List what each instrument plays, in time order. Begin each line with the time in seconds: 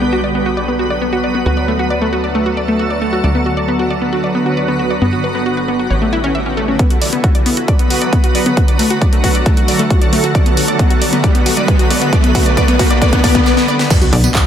Already playing: analog synth bass B1, ambient pad D3 F#3 B3 F#4 B4
0.02 synth arpeggio sound B3
0.13 synth arpeggio sound F#4
0.24 synth arpeggio sound D5
0.35 synth arpeggio sound B3
0.46 synth arpeggio sound F#4
0.57 synth arpeggio sound D5
0.68 synth arpeggio sound B3
0.79 synth arpeggio sound F#4
0.90 synth arpeggio sound D5
1.02 synth arpeggio sound B3
1.13 synth arpeggio sound F#4
1.24 synth arpeggio sound D5
1.35 synth arpeggio sound B3
1.46 analog synth bass D2, ambient pad D3 F#3 A3 A4, synth arpeggio sound F#4
1.57 synth arpeggio sound D5
1.68 synth arpeggio sound A3
1.79 synth arpeggio sound F#4
1.90 synth arpeggio sound D5
2.02 synth arpeggio sound A3
2.13 synth arpeggio sound F#4
2.24 synth arpeggio sound D5
2.35 synth arpeggio sound A3
2.46 synth arpeggio sound F#4
2.57 synth arpeggio sound D5
2.68 synth arpeggio sound A3
2.79 synth arpeggio sound F#4
2.90 synth arpeggio sound D5
3.02 synth arpeggio sound A3
3.13 synth arpeggio sound F#4
3.24 analog synth bass D2, ambient pad B3 F#4 B4, synth arpeggio sound D5
3.35 synth arpeggio sound B3
3.46 synth arpeggio sound F#4
3.57 synth arpeggio sound D5
3.68 synth arpeggio sound B3
3.79 synth arpeggio sound F#4
3.90 synth arpeggio sound D5
4.02 synth arpeggio sound B3
4.13 synth arpeggio sound F#4
4.24 synth arpeggio sound D5
4.35 synth arpeggio sound B3
4.46 synth arpeggio sound F#4
4.57 synth arpeggio sound D5
4.68 synth arpeggio sound B3
4.79 synth arpeggio sound F#4
4.90 synth arpeggio sound D5
5.02 analog synth bass G1, synth arpeggio sound B3
5.13 synth arpeggio sound F#4
5.24 synth arpeggio sound B4
5.35 synth arpeggio sound B3
5.46 synth arpeggio sound F#4
5.57 synth arpeggio sound B4
5.68 synth arpeggio sound B3
5.79 synth arpeggio sound F#4
5.90 analog synth bass A1, synth arpeggio sound C#5
6.02 synth arpeggio sound A3
6.13 synth arpeggio sound E4
6.24 synth arpeggio sound C#4
6.35 synth arpeggio sound E5
6.46 synth arpeggio sound C#4
6.57 synth arpeggio sound A3
6.68 synth arpeggio sound C#4
6.79 ambient pad D3 F#3 B3 F#4 B4, synth arpeggio sound B3, kick, closed hi-hat, riser
6.90 synth arpeggio sound F#4, closed hi-hat
7.02 synth arpeggio sound D5, open hi-hat
7.13 synth arpeggio sound B3, closed hi-hat
7.24 synth arpeggio sound F#4, kick, closed hi-hat, mid tom
7.35 synth arpeggio sound D5, closed hi-hat
7.46 synth arpeggio sound B3, open hi-hat
7.57 synth arpeggio sound F#4, closed hi-hat
7.68 synth arpeggio sound D5, kick, closed hi-hat
7.79 synth arpeggio sound B3, closed hi-hat
7.90 synth arpeggio sound F#4, open hi-hat
8.02 synth arpeggio sound D5, closed hi-hat
8.13 synth arpeggio sound B3, kick, closed hi-hat
8.24 synth arpeggio sound F#4, closed hi-hat
8.35 synth arpeggio sound D5, open hi-hat, mid tom
8.46 synth arpeggio sound B3, closed hi-hat, mid tom
8.57 ambient pad A3 A4, synth arpeggio sound F#4, kick, closed hi-hat
8.68 synth arpeggio sound D5, closed hi-hat
8.79 synth arpeggio sound A3, open hi-hat
8.90 synth arpeggio sound F#4, closed hi-hat
9.02 synth arpeggio sound D5, kick, closed hi-hat, mid tom
9.13 synth arpeggio sound A3, closed hi-hat
9.24 synth arpeggio sound F#4, kick, open hi-hat
9.35 synth arpeggio sound D5, closed hi-hat
9.46 synth arpeggio sound A3, kick, closed hi-hat
9.57 synth arpeggio sound F#4, closed hi-hat
9.68 synth arpeggio sound D5, open hi-hat
9.79 synth arpeggio sound A3, closed hi-hat
9.90 synth arpeggio sound F#4, kick, closed hi-hat
10.02 synth arpeggio sound D5, closed hi-hat
10.13 synth arpeggio sound A3, open hi-hat
10.24 synth arpeggio sound F#4, closed hi-hat, mid tom
10.35 ambient pad B3 B4, synth arpeggio sound D5, kick, closed hi-hat
10.46 synth arpeggio sound B3, closed hi-hat
10.57 synth arpeggio sound F#4, open hi-hat
10.68 synth arpeggio sound D5, closed hi-hat
10.79 synth arpeggio sound B3, kick, closed hi-hat, mid tom
10.90 synth arpeggio sound F#4, closed hi-hat
11.02 synth arpeggio sound D5, open hi-hat
11.13 synth arpeggio sound B3, closed hi-hat
11.24 synth arpeggio sound D5, kick, closed hi-hat
11.35 synth arpeggio sound B3, closed hi-hat
11.46 synth arpeggio sound F#4, open hi-hat
11.57 synth arpeggio sound D5, closed hi-hat
11.68 synth arpeggio sound B3, kick, closed hi-hat
11.79 synth arpeggio sound F#4, closed hi-hat
11.90 synth arpeggio sound D5, open hi-hat, mid tom
12.02 synth arpeggio sound B3, closed hi-hat, mid tom
12.13 ambient pad D3 G3, synth arpeggio sound D5, kick, closed hi-hat
12.24 synth arpeggio sound B3, closed hi-hat
12.35 synth arpeggio sound F#4, kick, open hi-hat
12.46 synth arpeggio sound D5, closed hi-hat
12.57 synth arpeggio sound D5, kick, closed hi-hat, mid tom
12.68 synth arpeggio sound B3, closed hi-hat
12.79 synth arpeggio sound F#4, kick, open hi-hat
12.90 synth arpeggio sound D5, closed hi-hat
13.02 synth arpeggio sound D5, kick, closed hi-hat, swell
13.13 synth arpeggio sound B3, kick, closed hi-hat
13.24 synth arpeggio sound D5, kick, open hi-hat
13.35 synth arpeggio sound B3, kick, closed hi-hat
13.46 synth arpeggio sound D5, snare
13.57 synth arpeggio sound B3, snare
13.68 synth arpeggio sound D5
13.79 synth arpeggio sound B3, snare
13.90 ambient pad D3 F#3 B3 F#4 B4, synth arpeggio sound B3, kick, closed hi-hat, crash, tambourine, impact
14.02 synth arpeggio sound F#4, closed hi-hat, mid tom, tambourine
14.13 analog synth bass B1, synth arpeggio sound D5, open hi-hat
14.24 synth arpeggio sound B3, closed hi-hat, tambourine
14.35 synth arpeggio sound F#4, kick, clap, closed hi-hat, tambourine